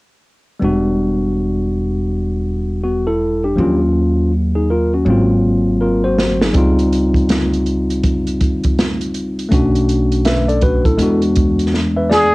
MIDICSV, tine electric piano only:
0, 0, Header, 1, 2, 480
1, 0, Start_track
1, 0, Tempo, 740741
1, 404, Time_signature, 4, 2, 24, 8
1, 8001, End_track
2, 0, Start_track
2, 0, Title_t, "Tine electric piano"
2, 0, Program_c, 0, 4
2, 383, Note_on_c, 0, 55, 56
2, 393, Note_on_c, 0, 59, 53
2, 408, Note_on_c, 0, 62, 52
2, 415, Note_on_c, 0, 66, 68
2, 1812, Note_off_c, 0, 59, 0
2, 1820, Note_off_c, 0, 62, 0
2, 1824, Note_off_c, 0, 66, 0
2, 1840, Note_on_c, 0, 66, 56
2, 1843, Note_on_c, 0, 59, 44
2, 1983, Note_off_c, 0, 66, 0
2, 1985, Note_off_c, 0, 59, 0
2, 1990, Note_on_c, 0, 69, 60
2, 1994, Note_on_c, 0, 64, 51
2, 2219, Note_off_c, 0, 69, 0
2, 2221, Note_off_c, 0, 64, 0
2, 2232, Note_on_c, 0, 67, 53
2, 2238, Note_on_c, 0, 62, 45
2, 2288, Note_off_c, 0, 55, 0
2, 2307, Note_on_c, 0, 53, 53
2, 2316, Note_on_c, 0, 58, 59
2, 2326, Note_on_c, 0, 61, 54
2, 2335, Note_on_c, 0, 65, 68
2, 2347, Note_on_c, 0, 54, 61
2, 2368, Note_off_c, 0, 53, 0
2, 2461, Note_off_c, 0, 67, 0
2, 2464, Note_off_c, 0, 62, 0
2, 2795, Note_off_c, 0, 61, 0
2, 2800, Note_off_c, 0, 65, 0
2, 2952, Note_on_c, 0, 68, 58
2, 2954, Note_on_c, 0, 63, 43
2, 3039, Note_off_c, 0, 68, 0
2, 3040, Note_off_c, 0, 63, 0
2, 3049, Note_on_c, 0, 70, 59
2, 3055, Note_on_c, 0, 65, 56
2, 3188, Note_off_c, 0, 70, 0
2, 3191, Note_off_c, 0, 65, 0
2, 3201, Note_on_c, 0, 66, 53
2, 3206, Note_on_c, 0, 61, 47
2, 3261, Note_off_c, 0, 58, 0
2, 3266, Note_off_c, 0, 54, 0
2, 3274, Note_on_c, 0, 54, 68
2, 3285, Note_on_c, 0, 58, 55
2, 3295, Note_on_c, 0, 60, 62
2, 3306, Note_on_c, 0, 65, 68
2, 3425, Note_off_c, 0, 66, 0
2, 3428, Note_off_c, 0, 61, 0
2, 3763, Note_off_c, 0, 65, 0
2, 3765, Note_on_c, 0, 70, 57
2, 3771, Note_on_c, 0, 65, 52
2, 3906, Note_off_c, 0, 70, 0
2, 3909, Note_off_c, 0, 65, 0
2, 3915, Note_on_c, 0, 72, 65
2, 3919, Note_on_c, 0, 66, 56
2, 4142, Note_off_c, 0, 72, 0
2, 4144, Note_off_c, 0, 66, 0
2, 4156, Note_on_c, 0, 68, 57
2, 4159, Note_on_c, 0, 63, 47
2, 4219, Note_off_c, 0, 54, 0
2, 4225, Note_off_c, 0, 58, 0
2, 4230, Note_off_c, 0, 60, 0
2, 4231, Note_on_c, 0, 55, 64
2, 4241, Note_on_c, 0, 60, 60
2, 4244, Note_off_c, 0, 63, 0
2, 4252, Note_on_c, 0, 63, 56
2, 4263, Note_on_c, 0, 65, 75
2, 4383, Note_off_c, 0, 68, 0
2, 6131, Note_off_c, 0, 55, 0
2, 6136, Note_off_c, 0, 60, 0
2, 6142, Note_off_c, 0, 63, 0
2, 6146, Note_on_c, 0, 57, 57
2, 6147, Note_off_c, 0, 65, 0
2, 6158, Note_on_c, 0, 61, 59
2, 6168, Note_on_c, 0, 62, 59
2, 6178, Note_on_c, 0, 66, 70
2, 6642, Note_off_c, 0, 66, 0
2, 6644, Note_on_c, 0, 76, 61
2, 6649, Note_on_c, 0, 71, 50
2, 6786, Note_off_c, 0, 76, 0
2, 6788, Note_off_c, 0, 71, 0
2, 6794, Note_on_c, 0, 74, 62
2, 6797, Note_on_c, 0, 69, 47
2, 6880, Note_off_c, 0, 74, 0
2, 6881, Note_off_c, 0, 69, 0
2, 6885, Note_on_c, 0, 71, 66
2, 6888, Note_on_c, 0, 66, 55
2, 7026, Note_off_c, 0, 71, 0
2, 7028, Note_off_c, 0, 66, 0
2, 7033, Note_on_c, 0, 69, 56
2, 7036, Note_on_c, 0, 64, 46
2, 7096, Note_off_c, 0, 57, 0
2, 7102, Note_off_c, 0, 61, 0
2, 7107, Note_off_c, 0, 62, 0
2, 7112, Note_on_c, 0, 56, 68
2, 7123, Note_on_c, 0, 59, 58
2, 7135, Note_on_c, 0, 62, 55
2, 7144, Note_on_c, 0, 66, 69
2, 7261, Note_off_c, 0, 69, 0
2, 7263, Note_off_c, 0, 64, 0
2, 7604, Note_off_c, 0, 66, 0
2, 7753, Note_on_c, 0, 76, 50
2, 7756, Note_on_c, 0, 71, 51
2, 7838, Note_on_c, 0, 74, 60
2, 7839, Note_off_c, 0, 76, 0
2, 7841, Note_off_c, 0, 71, 0
2, 7843, Note_on_c, 0, 68, 52
2, 7983, Note_off_c, 0, 74, 0
2, 7985, Note_off_c, 0, 68, 0
2, 8001, Note_off_c, 0, 56, 0
2, 8001, Note_off_c, 0, 59, 0
2, 8001, Note_off_c, 0, 62, 0
2, 8001, End_track
0, 0, End_of_file